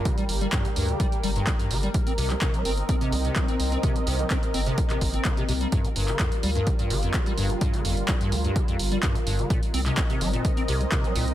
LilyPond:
<<
  \new Staff \with { instrumentName = "Analog synth pad" } { \time 4/4 \key g \minor \tempo 4 = 127 <g g' bes'>1 | <c' ees''>1~ | <c' ees''>1 | <g f'>1~ |
<g f'>1 | <c' bes' ees''>1 | }
  \new Staff \with { instrumentName = "Acid bass" } { \clef bass \time 4/4 \key g \minor d16 g16 r16 g16 g,16 g16 g,16 d16 g16 r16 g16 g,16 g16 g,16 d16 g16 | r16 c'16 c16 c'16 c16 g16 c'16 r16 c'16 c16 c'16 c16 g16 c'16 r16 c'16 | c16 c'16 c16 g16 c'16 r16 c'16 c16 c'16 c16 r16 c'16 c16 c16 c16 g16 | g,16 g16 g,16 d16 f,16 r16 g16 g,16 g16 g,16 d16 f,16 r16 g16 g,16 g16 |
g,16 d16 f,16 r16 g16 g,16 g16 g,16 d16 f,16 r16 g16 g,16 g16 g,16 d16 | bes,16 r16 c'16 c16 c'16 c16 g16 bes,16 r16 c'16 c16 c'16 c16 g16 bes,16 r16 | }
  \new Staff \with { instrumentName = "Analog synth bass" } { \clef bass \time 4/4 \key g \minor r8 g,,8 r8 d,8 r8 g,,8 r8 g,,8 | r8 c,8 r8 g,,8 r8 c,8 r8 c,8 | r8 c,8 r8 g,,8 r8 g,,8 r8 c,8 | r8 g,,8 r8 d,8 r8 g,,8 r8 g,,8 |
r8 g,,8 r8 d,8 r8 g,,8 r8 g,,8 | r8 c,8 r8 g,,8 r8 c,8 r8 c,8 | }
  \new DrumStaff \with { instrumentName = "Drums" } \drummode { \time 4/4 <hh bd>16 hh16 hho16 hh16 <hc hh bd>16 hh16 hho16 hh16 <hh bd>16 hh16 hho16 hh16 <hc hh bd>16 hh16 hho16 hh16 | <hh bd>16 hh16 hho16 <hc hh>16 <hc hh bd>16 hh16 hho16 hh16 <hh bd>16 hh16 hho16 hh16 <hc hh bd>16 hh16 hho16 hh16 | <hh bd>16 hh16 hho16 hh16 <hc hh bd>16 hh16 hho16 hh16 <hh bd>16 <hc hh>16 <hho bd>16 hh16 <hc hh bd>16 hh16 hho16 hh16 | <hh bd>16 hh16 hho16 <hc hh>16 <hc hh bd>16 hh16 hho16 hh16 <hh bd>16 hh16 hho16 hh16 <hc hh bd>16 hh16 hho16 hh16 |
<hh bd>16 hh16 hho16 hh16 <hc hh bd>16 hh16 hho16 hh16 <hh bd>16 hh16 hho16 hh16 <hc hh bd>16 hh16 hho16 hh16 | <hh bd>16 hh16 hho16 <hc hh>16 <hc hh bd>16 hh16 hho16 hh16 <hh bd>16 hh16 hho16 hh16 <hc hh bd>16 hh16 hho16 hh16 | }
>>